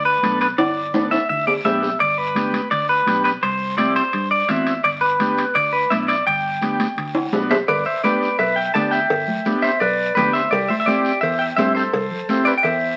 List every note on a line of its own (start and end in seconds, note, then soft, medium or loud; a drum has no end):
0.00 0.16 D2 medium
0.05 0.38 B4 medium
0.23 0.51 B1 medium
0.23 0.48 B3 medium
0.23 0.48 D4 medium
0.23 0.48 A4 medium
0.23 high conga medium
0.23 high timbale medium
0.23 short guiro medium
0.41 0.46 B4 medium
0.41 high timbale medium
0.41 short guiro medium
0.58 1.15 G1 loud
0.58 1.08 D5 medium
0.58 high timbale medium
0.58 long guiro medium
0.94 1.19 B3 medium
0.94 1.19 D4 medium
0.94 1.19 A4 medium
0.94 high conga medium
0.94 high timbale medium
0.94 short guiro medium
1.11 1.28 E5 medium
1.11 high timbale medium
1.11 short guiro medium
1.29 1.58 D2 medium
1.29 1.46 E5 medium
1.29 long guiro medium
1.47 1.52 D5 medium
1.47 low timbale medium
1.64 1.94 B1 medium
1.64 1.90 B3 medium
1.64 1.90 D4 medium
1.64 1.90 G4 medium
1.64 2.00 E5 medium
1.64 high conga medium
1.64 low timbale medium
1.64 short guiro medium
1.83 low timbale medium
1.83 short guiro medium
2.00 2.58 G1 medium
2.00 2.18 D5 medium
2.00 high timbale medium
2.00 long guiro medium
2.18 2.71 B4 medium
2.35 2.61 B3 medium
2.35 2.61 D4 medium
2.35 2.61 G4 medium
2.35 high conga medium
2.35 high timbale medium
2.35 short guiro medium
2.53 high conga medium
2.53 high timbale medium
2.53 short guiro medium
2.71 3.00 D2 medium
2.71 2.88 D5 medium
2.71 high timbale medium
2.71 long guiro medium
2.89 3.23 B4 medium
3.06 3.36 B1 medium
3.06 3.32 B3 medium
3.06 3.32 D4 medium
3.06 3.32 G4 medium
3.06 high conga medium
3.06 high timbale medium
3.06 short guiro medium
3.24 3.29 B4 medium
3.24 high timbale medium
3.24 short guiro medium
3.43 3.99 C2 loud
3.43 3.77 C5 medium
3.43 high timbale medium
3.43 long guiro medium
3.78 4.03 C4 medium
3.78 4.03 E4 medium
3.78 4.03 G4 medium
3.78 3.96 D5 medium
3.78 high conga medium
3.78 high timbale medium
3.78 short guiro medium
3.96 4.31 C5 medium
3.96 high timbale medium
3.96 short guiro medium
4.13 4.42 G2 medium
4.13 high timbale medium
4.13 long guiro medium
4.31 4.48 D5 medium
4.48 4.77 E2 medium
4.48 4.74 C4 medium
4.48 4.74 E4 medium
4.48 4.74 F#4 medium
4.48 4.84 E5 medium
4.48 high conga medium
4.48 high timbale medium
4.48 short guiro medium
4.67 high timbale medium
4.67 short guiro medium
4.84 5.41 G1 loud
4.84 4.89 D5 loud
4.84 high timbale medium
4.84 long guiro medium
5.01 5.57 B4 medium
5.20 5.45 B3 medium
5.20 5.45 D4 medium
5.20 5.45 G4 medium
5.20 high conga medium
5.20 high timbale medium
5.20 short guiro medium
5.38 high timbale medium
5.38 short guiro medium
5.55 5.84 D2 medium
5.55 5.72 D5 loud
5.55 high timbale medium
5.55 long guiro medium
5.73 5.91 B4 medium
5.90 6.20 B1 medium
5.90 6.16 B3 medium
5.90 6.16 D4 medium
5.90 6.16 E4 medium
5.90 5.95 E5 medium
5.90 high conga medium
5.90 high timbale medium
5.90 short guiro medium
6.08 6.25 D5 medium
6.08 high timbale medium
6.08 short guiro medium
6.26 6.84 G1 loud
6.26 7.29 G5 loud
6.26 high timbale medium
6.26 long guiro medium
6.61 6.87 B3 medium
6.61 6.87 D4 medium
6.61 6.87 G4 medium
6.61 high conga medium
6.61 high timbale medium
6.61 short guiro medium
6.79 high conga medium
6.79 high timbale medium
6.79 short guiro medium
6.97 7.26 D2 medium
6.97 high timbale medium
6.97 long guiro medium
7.15 high timbale loud
7.32 7.61 B1 medium
7.32 7.58 B3 medium
7.32 7.58 D4 medium
7.32 7.58 F#4 loud
7.32 high conga medium
7.32 low timbale medium
7.32 short guiro medium
7.51 7.56 C5 medium
7.51 7.56 E5 medium
7.51 low timbale medium
7.51 short guiro medium
7.68 7.83 G1 loud
7.68 7.85 B4 medium
7.68 7.85 D5 loud
7.68 cowbell loud
7.68 long guiro medium
7.86 8.03 C5 medium
7.86 8.03 E5 medium
8.04 8.29 B3 medium
8.04 8.29 D4 medium
8.04 8.29 G4 medium
8.04 8.37 B4 medium
8.04 8.38 D5 medium
8.04 cowbell medium
8.04 high conga medium
8.04 short guiro medium
8.22 short guiro medium
8.39 8.68 B1 medium
8.39 8.56 B4 medium
8.39 8.56 E5 loud
8.39 cowbell medium
8.39 long guiro medium
8.56 8.74 E5 medium
8.56 8.73 G5 loud
8.74 9.03 D2 medium
8.74 9.00 B3 medium
8.74 9.00 D4 medium
8.74 9.00 G4 medium
8.74 8.92 D5 medium
8.74 8.91 A5 loud
8.74 cowbell medium
8.74 high conga medium
8.74 short guiro medium
8.91 9.60 E5 medium
8.91 9.65 G5 medium
8.91 short guiro medium
9.10 9.24 G1 loud
9.10 cowbell loud
9.10 long guiro medium
9.28 high conga medium
9.28 low conga medium
9.45 9.71 B3 medium
9.45 9.71 D4 medium
9.45 9.71 G4 medium
9.45 cowbell medium
9.45 high conga medium
9.45 short guiro medium
9.62 9.80 C5 medium
9.62 9.79 E5 medium
9.62 short guiro medium
9.80 10.09 B1 loud
9.80 10.14 B4 medium
9.80 10.14 D5 loud
9.80 cowbell medium
9.80 long guiro medium
10.15 10.45 D2 medium
10.15 10.42 B3 medium
10.15 10.42 D4 medium
10.15 10.33 G4 medium
10.15 10.42 G4 medium
10.15 10.32 B4 medium
10.15 cowbell medium
10.15 high conga medium
10.15 low conga medium
10.15 short guiro medium
10.33 10.50 C5 medium
10.33 10.50 E5 medium
10.33 short guiro medium
10.51 10.66 C2 loud
10.51 10.69 G4 medium
10.51 10.68 D5 loud
10.51 cowbell loud
10.51 long guiro medium
10.68 10.75 C5 medium
10.68 10.73 E5 medium
10.68 high conga medium
10.80 10.87 E5 medium
10.86 11.12 C4 medium
10.86 11.12 E4 medium
10.86 11.12 G4 medium
10.86 11.21 G4 medium
10.86 11.20 D5 medium
10.86 cowbell medium
10.86 high conga medium
10.86 short guiro medium
11.05 short guiro medium
11.21 11.51 E2 loud
11.21 11.40 C5 medium
11.21 11.40 E5 loud
11.21 cowbell medium
11.21 long guiro medium
11.39 11.46 E5 medium
11.39 11.44 G5 medium
11.56 11.87 G2 medium
11.56 11.83 C4 medium
11.56 11.83 E4 medium
11.56 11.83 G4 medium
11.56 11.73 C5 medium
11.56 11.74 E5 medium
11.56 cowbell medium
11.56 high conga medium
11.56 low timbale medium
11.56 short guiro medium
11.75 12.43 A4 medium
11.75 12.42 C5 medium
11.75 short guiro medium
11.93 12.08 C2 loud
11.93 cowbell loud
11.93 long guiro medium
12.11 low conga medium
12.29 12.54 C4 medium
12.29 12.54 E4 medium
12.29 12.54 G4 loud
12.29 cowbell medium
12.29 high conga medium
12.29 short guiro medium
12.45 12.52 B4 medium
12.45 12.50 D5 medium
12.45 short guiro medium
12.58 12.65 G5 medium
12.63 12.93 E2 loud
12.63 12.97 C5 medium
12.63 12.97 E5 medium
12.63 cowbell medium
12.63 long guiro medium